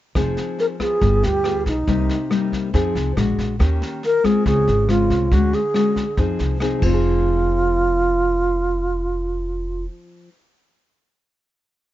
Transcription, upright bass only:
0.16 F1
1.02 G1
1.23 D2
1.66 B1
1.88 C2
2.74 F2
2.95 C2
3.17 A#1
3.39 A#1
3.60 D#2
4.46 C#2
4.67 G#1
5.10 C2
5.32 D2
6.18 F2
6.39 C2
6.82 F1

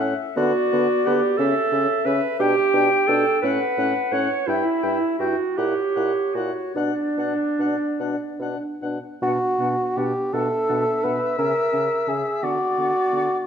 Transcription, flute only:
Already playing: E5
0.36 D5
1.38 E5
2.41 G5
3.45 F#5
4.49 E5
5.58 C#5
6.75 D5
9.23 F#5
9.60 F#5
9.96 F#5
10.34 F#5
10.69 F#5
11.04 F#5
11.39 E5
11.73 E5
12.09 E5
12.42 F#5
12.79 F#5
13.14 F#5

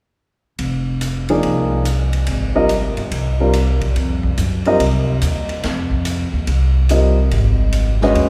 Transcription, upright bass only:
0.59 F1
1.43 C2
2.28 G#1
2.97 G1
3.11 C2
3.96 F2
4.38 F#2
4.79 C2
5.22 D#2
5.64 F2
6.33 D#2
6.47 C2
7.31 G#1
8.14 D#2

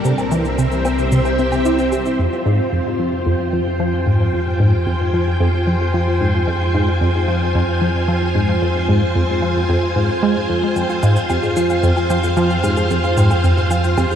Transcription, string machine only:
Already playing: A#4
0.05 C4
0.27 E5
0.55 G4
0.91 C5
2.19 F4
2.47 G5
3.82 G#5
10.05 F5

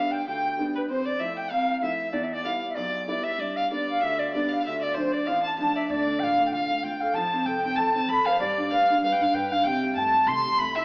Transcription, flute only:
Already playing: F5
0.11 G5
0.27 G5
0.76 B4
0.89 C5
1.06 D5
1.21 E5
1.37 G5
1.50 F5
1.76 F5
1.82 E5
2.12 D5
2.24 E5
2.34 D5
2.45 F5
2.70 E5
2.75 D5
3.08 D5
3.24 E5
3.40 D5
3.56 F5
3.72 D5
3.90 F5
4.04 E5
4.19 D5
4.35 D5
4.53 F5
4.65 E5
4.83 D5
4.98 C5
5.13 D5
5.27 F5
5.46 A5
5.60 A5
5.76 E5
5.89 D5
6.19 F5 G5
6.46 G5
6.53 F5
6.83 G5
7.01 F5
7.14 A5
7.46 G5
7.78 A5
8.11 B5
8.26 F5
8.40 D5
8.72 F5
9.01 F5
9.35 G5
9.52 F5
9.67 G5
9.98 A5
10.28 C6
10.59 B5
10.75 E5

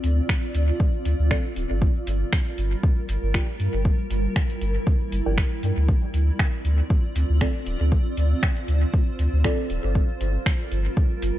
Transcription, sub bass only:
0.04 D2
0.55 D2
1.05 D2
1.19 D2
1.56 D1
1.70 G1
2.07 G1
2.58 G1
3.09 G1
3.23 G1
3.60 G2
3.74 G1
4.11 G1
4.61 G1
5.12 G1
5.26 G1
5.63 G2
5.77 D2
6.14 D2
6.65 D2
7.16 D2
7.30 D2
7.67 D1
7.80 D2
8.17 D2
8.68 D2
9.19 D2
9.33 D2
9.70 D1
9.84 G1
10.21 G1
10.72 G1
11.22 G1

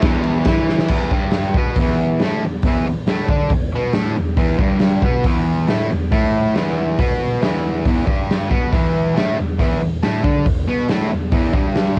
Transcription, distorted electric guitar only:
0.02 E2 E3
0.47 E3 E4
0.90 E2 E3
1.13 G2 G3
1.57 B2 B3
1.80 E2 E3
2.23 A2 A3
2.44 E2
2.65 E2 E3
2.87 E2
3.07 A2 A3
3.30 D3 D4
3.52 E2
3.75 B2 B3
3.94 A2 A3
4.16 E2
4.37 E2 E3
4.60 G2 G3
5.02 B2 B3
5.25 E2 E3
5.67 A2 A3
5.91 E2
6.11 A2 A3
6.54 E2 E3
6.99 B2 B3
7.42 E2 E3
7.86 E2 E3
8.05 G2 G3
8.49 B2 B3
8.72 E2 E3
9.15 A2 A3
9.37 E2
9.59 E2 E3
9.82 E2
10.03 A2 A3
10.24 D3 D4
10.46 E2
10.67 B2 B3
10.89 A2 A3
11.10 E2
11.31 E2 E3
11.54 G2 G3

